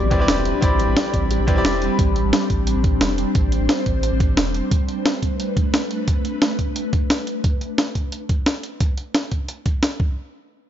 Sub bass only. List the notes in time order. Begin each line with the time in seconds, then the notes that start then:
0.03 A1
0.28 E1
0.62 A1
0.89 A1
1.13 A1
1.40 A1
1.65 E1
1.99 A1
2.25 A1
2.50 A1
2.76 A1
3.01 E1
3.35 A1
3.61 A1
3.86 A1
4.12 A1
4.37 E1